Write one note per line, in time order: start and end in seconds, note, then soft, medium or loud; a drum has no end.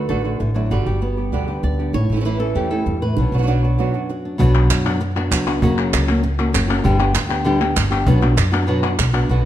0.00 0.24 D3 medium
0.00 0.39 A3 medium
0.00 0.55 D4 soft
0.00 0.40 B4 medium
0.09 0.38 A1 medium
0.09 0.24 D3 medium
0.09 0.24 A3 medium
0.09 0.24 D4 medium
0.09 0.23 F#4 medium
0.09 0.70 A4 medium
0.24 0.69 D3 soft
0.24 0.39 A3 soft
0.24 0.39 D4 soft
0.24 0.39 F#4 soft
0.40 0.69 A1 medium
0.40 0.54 E3 medium
0.40 muted nylon-string guitar stroke soft
0.54 0.70 F#3 medium
0.54 0.70 A3 soft
0.54 0.70 D4 soft
0.54 0.71 E4 medium
0.54 0.70 F#4 soft
0.70 0.85 G1 medium
0.70 0.85 B2 medium
0.70 0.85 D3 medium
0.70 1.92 G3 medium
0.70 0.86 G3 soft
0.70 0.86 B3 medium
0.70 1.17 F#4 medium
0.70 0.85 G4 medium
0.86 1.29 G1 medium
0.86 1.01 G3 soft
0.86 1.01 B3 soft
0.86 1.01 G4 soft
0.86 1.48 G4 medium
1.01 1.92 B3 medium
1.01 muted nylon-string guitar stroke soft
1.17 1.32 G3 soft
1.17 1.32 B3 soft
1.17 1.32 G4 soft
1.32 1.61 D2 medium
1.32 1.47 B2 soft
1.32 1.47 D3 medium
1.32 1.47 G3 medium
1.32 1.48 B3 medium
1.32 1.47 G4 medium
1.32 1.63 B4 soft
1.48 1.92 D3 soft
1.48 1.63 G3 soft
1.48 1.63 B3 soft
1.48 1.62 G4 soft
1.63 1.91 D2 medium
1.63 1.94 D5 medium
1.63 muted nylon-string guitar stroke soft
1.79 1.94 G3 soft
1.79 1.94 B3 soft
1.79 1.92 D4 soft
1.79 1.93 G4 soft
1.93 2.08 A1 medium
1.93 2.86 A2 medium
1.93 2.25 C#5 medium
1.93 muted nylon-string guitar stroke medium
2.10 2.52 A1 medium
2.10 2.15 E3 soft
2.10 2.15 A3 soft
2.10 2.16 C#4 soft
2.10 2.16 E4 soft
2.16 2.19 E3 soft
2.16 2.20 A3 soft
2.16 2.20 C#4 soft
2.16 2.20 E4 soft
2.21 2.24 E3 medium
2.21 2.24 A3 medium
2.21 2.25 C#4 medium
2.21 2.25 E4 medium
2.25 2.39 E3 medium
2.25 2.69 E3 medium
2.25 2.40 A3 medium
2.25 2.40 C#4 medium
2.25 2.39 E4 medium
2.25 2.39 B4 medium
2.40 2.54 A3 soft
2.40 2.55 C#4 soft
2.40 2.55 E4 soft
2.40 2.69 A4 medium
2.55 2.84 E2 medium
2.55 2.70 E3 medium
2.55 2.70 A3 medium
2.55 2.70 C#4 medium
2.55 2.69 E4 medium
2.55 3.01 G4 medium
2.70 3.15 E3 medium
2.70 2.85 A3 soft
2.70 2.86 C#4 soft
2.70 2.85 E4 soft
2.70 3.01 A4 medium
2.86 3.15 E2 medium
2.86 3.01 G2 medium
2.86 muted nylon-string guitar stroke soft
3.02 3.17 A2 soft
3.02 4.09 B4 medium
3.17 3.31 B1 medium
3.17 3.94 B2 medium
3.17 3.48 F#3 soft
3.17 3.63 B3 soft
3.17 3.33 D4 soft
3.17 muted nylon-string guitar stroke medium
3.32 3.75 B1 medium
3.32 3.37 F#3 soft
3.32 3.37 B3 soft
3.32 3.38 D4 soft
3.32 3.79 D4 soft
3.32 3.38 F#4 soft
3.38 3.41 F#3 soft
3.38 3.42 B3 soft
3.38 3.42 D4 soft
3.38 3.43 F#4 soft
3.43 3.46 F#3 soft
3.43 3.46 B3 soft
3.43 3.47 D4 medium
3.43 3.47 F#4 medium
3.47 3.62 B2 medium
3.47 3.62 F#3 medium
3.47 4.38 F#3 medium
3.47 3.62 B3 medium
3.47 3.62 D4 medium
3.47 3.62 F#4 medium
3.63 3.78 B3 soft
3.63 4.38 B3 soft
3.63 3.78 D4 soft
3.63 3.78 F#4 soft
3.78 3.93 B2 medium
3.78 3.93 F#3 medium
3.78 3.93 B3 medium
3.78 3.93 D4 medium
3.78 4.24 D4 soft
3.78 3.93 F#4 medium
3.94 4.40 F#2 soft
3.94 4.09 B3 soft
3.94 4.09 D4 soft
3.94 4.08 F#4 soft
4.09 4.39 F#4 soft
4.09 muted nylon-string guitar stroke soft
4.25 4.38 D4 soft
4.38 4.68 B1 medium
4.38 4.84 B2 medium
4.38 5.01 F#3 medium
4.38 4.85 B3 medium
4.38 4.85 D4 medium
4.38 4.85 F#4 medium
4.38 cajon bass loud
4.70 5.28 F#2 medium
4.70 cajon slap loud
4.70 clap medium
4.86 5.00 B3 soft
4.86 5.00 D4 medium
4.86 5.00 F#4 medium
4.86 clap soft
5.00 muted nylon-string guitar stroke medium
5.00 cajon slap soft
5.16 5.30 B3 soft
5.16 5.31 D4 medium
5.16 5.31 F#4 medium
5.16 cajon slap soft
5.16 clap soft
5.31 5.60 C#2 medium
5.31 5.46 F#3 medium
5.31 5.46 B3 medium
5.31 5.47 D4 medium
5.31 5.45 F#4 medium
5.31 cajon bass medium
5.31 cajon slap loud
5.31 clap medium
5.47 5.62 B3 soft
5.47 5.62 D4 soft
5.47 5.61 F#4 medium
5.47 clap soft
5.62 5.91 F#1 medium
5.62 6.07 C#3 medium
5.62 6.08 F#3 medium
5.62 6.08 A#3 medium
5.62 6.08 C#4 medium
5.62 6.06 F#4 medium
5.62 cajon bass loud
5.78 cajon slap soft
5.78 clap soft
5.93 6.50 C#2 medium
5.93 cajon slap loud
5.93 clap medium
6.08 6.22 A#3 medium
6.08 6.22 C#4 medium
6.08 6.23 F#4 medium
6.08 clap soft
6.23 muted nylon-string guitar stroke medium
6.23 cajon slap soft
6.39 6.52 A#3 soft
6.39 6.52 C#4 medium
6.39 6.53 F#4 medium
6.39 clap soft
6.53 6.83 F#1 medium
6.53 6.68 F#3 medium
6.53 6.68 A#3 medium
6.53 6.68 C#4 medium
6.53 6.67 F#4 medium
6.53 cajon bass medium
6.53 cajon slap loud
6.53 clap medium
6.68 6.84 A#3 soft
6.68 6.84 C#4 medium
6.68 6.83 F#4 medium
6.68 clap medium
6.84 7.13 G1 medium
6.84 6.99 D3 medium
6.84 6.99 G3 medium
6.84 6.99 B3 medium
6.84 6.98 D4 medium
6.84 6.98 G4 medium
6.84 cajon bass medium
6.99 7.13 B3 soft
6.99 7.14 D4 medium
6.99 7.14 G4 medium
6.99 clap soft
7.14 7.73 D2 medium
7.14 muted nylon-string guitar stroke medium
7.14 cajon slap loud
7.14 clap medium
7.29 7.44 B3 medium
7.29 7.45 D4 medium
7.29 7.44 G4 medium
7.29 clap soft
7.45 7.60 D3 medium
7.45 7.60 G3 medium
7.45 7.60 B3 medium
7.45 7.60 D4 medium
7.45 7.59 G4 medium
7.61 7.75 B3 soft
7.61 7.75 D4 medium
7.61 7.76 G4 medium
7.61 clap soft
7.76 8.05 G1 medium
7.76 muted nylon-string guitar stroke medium
7.76 cajon bass medium
7.76 cajon slap medium
7.76 clap medium
7.90 8.06 B3 medium
7.90 8.06 D4 medium
7.90 8.06 G4 medium
7.90 clap soft
8.06 8.35 B1 loud
8.06 8.21 B2 medium
8.06 8.22 F#3 medium
8.06 8.22 B3 medium
8.06 8.21 D4 medium
8.06 8.20 F#4 medium
8.06 cajon bass loud
8.22 8.36 B3 soft
8.22 8.36 D4 soft
8.22 8.36 F#4 medium
8.22 clap soft
8.37 8.95 F#2 medium
8.37 muted nylon-string guitar stroke medium
8.37 cajon slap loud
8.37 clap medium
8.52 8.67 B3 soft
8.52 8.67 D4 medium
8.52 8.67 F#4 medium
8.52 clap medium
8.67 8.82 B2 medium
8.67 8.83 F#3 medium
8.67 8.83 B3 medium
8.67 8.83 D4 medium
8.67 8.82 F#4 medium
8.83 8.97 B3 soft
8.83 8.98 D4 medium
8.83 8.98 F#4 medium
8.83 clap soft
8.98 9.28 B1 medium
8.98 muted nylon-string guitar stroke medium
8.98 cajon bass medium
8.98 cajon slap medium
8.98 clap medium
9.13 9.29 B3 medium
9.13 9.29 D4 soft
9.13 9.29 F#4 medium
9.13 clap soft
9.29 9.45 B1 medium
9.29 9.45 B2 medium
9.29 9.45 D3 soft
9.29 9.45 B3 soft
9.29 9.45 B3 medium
9.29 9.45 D4 soft
9.29 9.45 F#4 medium